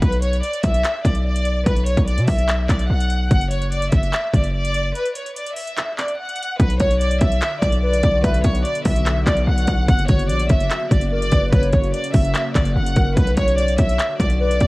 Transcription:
0.02 B1 B4, kick, closed hi-hat
0.12 closed hi-hat
0.22 C#5, closed hi-hat
0.33 closed hi-hat
0.43 D5, closed hi-hat
0.53 closed hi-hat
0.63 B1 E5, kick, closed hi-hat
0.74 closed hi-hat
0.84 clap, closed hi-hat
1.04 B1 D5, kick, closed hi-hat
1.15 closed hi-hat
1.26 D5
1.36 closed hi-hat
1.45 closed hi-hat
1.66 B1 B4, kick, closed hi-hat
1.77 closed hi-hat
1.86 C#5, closed hi-hat
1.97 B1, kick, closed hi-hat
2.07 D5, closed hi-hat
2.18 B2, closed hi-hat
2.28 B1 E5, kick, open hi-hat
2.39 closed hi-hat
2.49 clap, closed hi-hat
2.69 B1 D5, kick, clap, closed hi-hat
2.79 closed hi-hat
2.89 B1 F#5
3.00 closed hi-hat
3.10 closed hi-hat
3.31 F#1 F#5, kick, closed hi-hat
3.41 closed hi-hat
3.51 C#5, closed hi-hat
3.62 closed hi-hat
3.72 D5, closed hi-hat
3.82 closed hi-hat
3.92 F#1 E5, kick, closed hi-hat
4.03 closed hi-hat
4.13 clap, closed hi-hat
4.33 F#1 D5, kick, closed hi-hat
4.44 closed hi-hat
4.54 D5
4.65 closed hi-hat
4.74 closed hi-hat
4.95 B4, closed hi-hat
5.05 closed hi-hat
5.15 C#5, closed hi-hat
5.26 closed hi-hat
5.36 D5, closed hi-hat
5.46 closed hi-hat
5.56 E5, open hi-hat
5.67 closed hi-hat
5.77 clap, closed hi-hat
5.97 D5, clap, closed hi-hat
6.08 closed hi-hat
6.19 F#5
6.29 closed hi-hat
6.36 closed hi-hat
6.42 closed hi-hat
6.59 B1 D3 B3 F#4 B4, kick, closed hi-hat
6.70 closed hi-hat
6.80 B1 C#5, kick, closed hi-hat
6.91 closed hi-hat
7.00 D5, closed hi-hat
7.11 closed hi-hat
7.21 B1 E5, kick, closed hi-hat
7.32 closed hi-hat
7.42 clap, closed hi-hat
7.62 B1 D5, kick, closed hi-hat
7.72 closed hi-hat
7.83 B4 D5
7.93 closed hi-hat
8.03 B1 D5, kick, closed hi-hat
8.24 B1 B4 E5, kick, closed hi-hat
8.34 closed hi-hat
8.44 B1 C#5, kick, closed hi-hat
8.55 closed hi-hat
8.65 D5, closed hi-hat
8.75 closed hi-hat
8.85 B1 E5, kick, open hi-hat
8.96 closed hi-hat
9.06 clap, closed hi-hat
9.27 B1 D5, kick, clap, closed hi-hat
9.37 closed hi-hat
9.47 B1 F#5
9.58 closed hi-hat
9.67 B1, kick, closed hi-hat
9.88 F#1 C#3 A#3 F#5, kick, closed hi-hat
9.99 closed hi-hat
10.08 F#1 C#5, kick, closed hi-hat
10.19 closed hi-hat
10.29 A#1 D5, closed hi-hat
10.40 closed hi-hat
10.49 F#1 E5, kick, closed hi-hat
10.60 closed hi-hat
10.70 clap, closed hi-hat
10.91 F#1 D5, kick, closed hi-hat
11.01 closed hi-hat
11.12 A#4 D5
11.22 closed hi-hat
11.32 F#1 B4, kick, closed hi-hat
11.52 F#1 B4 C#5, kick, closed hi-hat
11.63 closed hi-hat
11.73 F#1 C#5, kick, closed hi-hat
11.84 closed hi-hat
11.94 D5, closed hi-hat
12.04 closed hi-hat
12.14 F#1 E5, kick, open hi-hat
12.25 closed hi-hat
12.35 clap, closed hi-hat
12.55 F#1 D5, kick, clap, closed hi-hat
12.65 closed hi-hat
12.76 F#1 F#5
12.87 closed hi-hat
12.96 F#1 A#4, kick, closed hi-hat
13.17 B1 D3 B3 F#4 B4, kick, closed hi-hat
13.27 closed hi-hat
13.37 B1 C#5, kick, closed hi-hat
13.48 closed hi-hat
13.58 D5, closed hi-hat
13.68 closed hi-hat
13.78 B1 E5, kick, closed hi-hat
13.89 closed hi-hat
13.99 clap, closed hi-hat
14.19 B1 D5, kick, closed hi-hat
14.30 closed hi-hat
14.40 B4 D5
14.51 closed hi-hat
14.60 B1 D5, kick, closed hi-hat

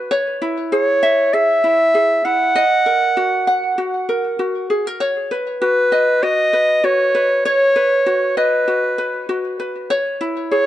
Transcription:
Already playing: F#4 B4 C#5 D#5
0.11 C#5
0.42 E4
0.72 G#4 C#5
1.03 E5
1.33 G#4 E5
1.64 E4
1.94 G#4
2.25 E4 F#5
2.55 D#5
2.86 A#4
3.17 F#4
3.47 F#5
3.78 F#4
4.09 A#4
4.39 F#4
4.70 G#4
4.87 A#4
5.00 C#5
5.31 B4
5.62 F#4 B4
5.92 D#5
6.23 F#4 D#5
6.53 B4
6.84 F#4 C#5
7.15 B4
7.45 C#5
7.76 B4
8.06 F#4
8.37 B4 D#5
8.68 F#4
8.98 B4
9.29 F#4
9.60 B4
9.90 C#5
10.21 E4
10.51 G#4 C#5

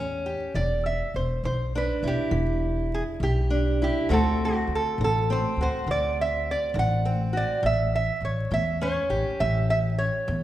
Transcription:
Already playing: E2 A2 G4
0.00 C#4
0.26 G4
0.54 E1 E3 D5
0.86 E5
1.14 E1 C5
1.44 B1 E3 C5
1.75 D4 B4
2.03 E1 E4
2.08 G4
2.31 E1 E3
2.94 G#4
3.20 B1 E3 G4
3.50 D4
3.82 E4 G4
4.09 D2 D3 A3 C4 F#4
4.13 A4
4.45 F#4
4.67 D2
4.75 A4
4.98 A1 D3
5.04 A4
5.30 C4 C5
5.56 D2
5.61 F#4 C5
5.87 D2 D3
5.91 D5
6.21 E5
6.51 D5
6.74 A1 D3
6.79 F#5
7.05 C4
7.33 F#4
7.37 D5
7.63 A1 A2 E5
7.95 E5
8.21 A1 C#5
8.51 E2 A2 E5
8.81 C#4 C#5
9.10 A1 G4
9.40 A1 A2 E5
9.70 E5
9.98 C#5
10.28 E2 A2

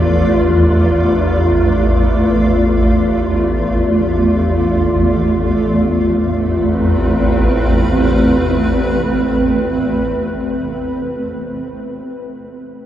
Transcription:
Already playing: A1 E2 A3 F4 D5
5.47 E2 A3
5.52 A1
5.66 C4
5.85 B4

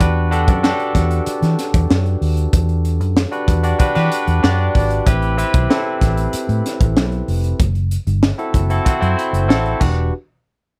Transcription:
0.00 E2 D4 F#4 G4 B4, kick, closed hi-hat
0.31 D4 F#4 G4 A4, closed hi-hat
0.48 F#2, kick, closed hi-hat
0.63 D4 F#4 G4 A4, snare
0.80 closed hi-hat
0.95 E2, kick, snare, closed hi-hat
1.11 closed hi-hat
1.26 muted fingered electric bass stroke, closed hi-hat
1.42 E3, snare, closed hi-hat
1.59 snare, closed hi-hat
1.74 E2, kick, closed hi-hat
1.90 F#2, snare
2.06 closed hi-hat
2.21 D#2, open hi-hat
2.37 closed hi-hat
2.53 E2, kick, closed hi-hat
2.69 closed hi-hat
2.85 closed hi-hat
3.00 F#2, closed hi-hat
3.17 snare
3.31 D4 F#4 G4 B4, closed hi-hat
3.48 E2, kick, closed hi-hat
3.63 D4 F#4 G4 D5, closed hi-hat
3.79 D4 F#4 G4 B4, muted fingered electric bass stroke, kick, closed hi-hat
3.95 E3 D4 F#4 G4 B4, snare, closed hi-hat
4.12 closed hi-hat
4.27 E2, closed hi-hat
4.43 F#2 D4 F#4 G4 D5, snare
4.75 G#1, kick, open hi-hat
4.91 closed hi-hat
5.06 A1 C4 E4 G4 B4, kick, closed hi-hat
5.22 closed hi-hat
5.38 C4 E4 G4 B4, closed hi-hat
5.54 B1, kick, closed hi-hat
5.70 C4 E4 G4 A4, snare
6.01 A1, kick, snare, closed hi-hat
6.17 closed hi-hat
6.33 muted fingered electric bass stroke, closed hi-hat
6.49 A2, closed hi-hat
6.66 snare, closed hi-hat
6.81 A1, kick, closed hi-hat
6.97 B1, snare
7.12 closed hi-hat
7.28 F1, open hi-hat
7.44 closed hi-hat
7.60 F#1, kick, closed hi-hat
7.75 closed hi-hat
7.91 closed hi-hat
8.07 G1, closed hi-hat
8.23 snare
8.38 C4 E4 F#4 A4, closed hi-hat
8.54 F#1, kick, closed hi-hat
8.70 C4 E4 F#4 A4, closed hi-hat
8.85 C4 E4 F#4 C5, muted fingered electric bass stroke, kick, closed hi-hat
9.00 F#2 C4 E4 F#4 C5, closed hi-hat
9.17 B5, closed hi-hat
9.33 F#1, closed hi-hat
9.48 A1 C4 E4 F#4 A4 A5, snare
9.66 closed hi-hat
9.80 E1 D4 F#4 G4 B4, kick, crash

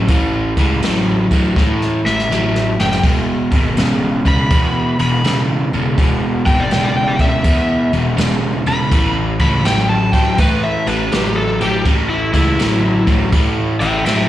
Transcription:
0.08 A1 A2 E3, kick, ride
0.57 C#2 A2 E3, kick, ride
0.82 A1 A2 F#3, snare, ride
1.31 A1 A2 F#3, kick, ride
1.56 A2 E3, kick, snare
1.82 snare
2.05 A1 A2 E3 E5, snare
2.20 snare
2.30 A1 A2 F#3, snare
2.56 snare
2.78 F#1 A2 F#3 G5, snare
2.93 snare
3.03 E1 E2 B2, kick, crash
3.51 G#1 E2 B2, kick, ride
3.77 E1 E2 C#3, snare, ride
4.25 E1 E2 C#3 B5, kick, ride
4.50 E2 B2, kick, ride
4.99 E1 E2 B2 B5, ride
5.24 E1 E2 C#3, snare, ride
5.72 E1 E2 C#3, ride
5.98 E1 E2 B2, kick, ride
6.46 G#1 E2 B2 G5, kick, ride
6.60 D5
6.71 E1 E2 C#3 G5, snare, ride
6.84 D5
6.97 G5
7.08 D5
7.19 E1 E2 C#3 E5, kick, ride
7.44 E2 B2, kick, ride
7.93 E1 E2 B2, ride
8.17 E1 E2 C#3, snare, ride
8.66 E1 E2 C#3 B5, ride
8.92 A1 A2 E3, kick, ride
9.39 C#2 A2 E3 B5, kick, ride
9.65 A1 A2 F#3 G5, snare, ride
9.89 A5
10.13 A1 A2 F#3 G5, kick, ride
10.38 A2 E3 B4, kick, ride
10.63 E5
10.87 A1 A2 E3 B4, ride
11.12 A1 A2 F#3 G4, snare, ride
11.36 A4
11.61 A1 A2 F#3 G4, ride
11.85 A1 A2 E3, kick, ride
12.09 E4
12.33 C#2 A2 E3 E4, kick, ride
12.59 A1 A2 F#3, snare, ride
13.07 A1 A2 F#3, kick, ride
13.32 A2 E3, kick, ride
13.80 A1 A2 E3 E5 G5, ride
14.05 A1 A2 F#3 E5 G5, snare, ride

